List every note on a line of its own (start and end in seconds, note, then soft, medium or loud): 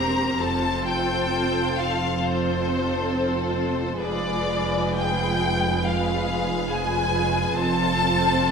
0.00 0.39 E1 soft
0.00 0.40 E2 soft
0.00 0.38 C4 soft
0.00 0.38 G4 soft
0.00 0.37 A#4 soft
0.00 0.37 C5 soft
0.00 0.40 A#5 medium
0.38 3.95 F1 soft
0.38 3.95 F2 soft
0.38 2.18 C4 soft
0.38 2.21 F4 soft
0.38 2.21 A4 soft
0.38 2.18 C5 soft
0.38 0.86 A5 medium
0.87 1.76 G5 medium
1.78 2.22 F5 medium
2.21 3.96 C4 soft
2.21 3.96 F4 soft
2.21 3.96 A4 soft
2.21 3.95 C5 soft
2.21 3.54 C5 soft
3.99 7.51 F1 soft
3.99 7.52 F2 soft
3.99 5.80 G#3 soft
3.99 5.79 F4 soft
3.99 5.80 G#4 soft
3.99 5.83 B4 soft
3.99 4.92 D5 medium
4.97 5.84 G5 medium
5.83 6.67 G#3 soft
5.83 6.67 F4 soft
5.83 6.67 G#4 soft
5.83 6.67 B4 soft
5.83 6.70 F5 soft
6.68 7.53 G#3 soft
6.68 7.53 F4 soft
6.68 7.54 G#4 soft
6.68 7.54 B4 soft
6.68 7.56 G#5 medium
7.55 8.51 F1 medium
7.55 8.51 F2 soft
7.55 8.51 C4 soft
7.55 8.51 F4 medium
7.55 8.51 A4 soft
7.55 8.51 C5 soft
7.55 8.51 A5 medium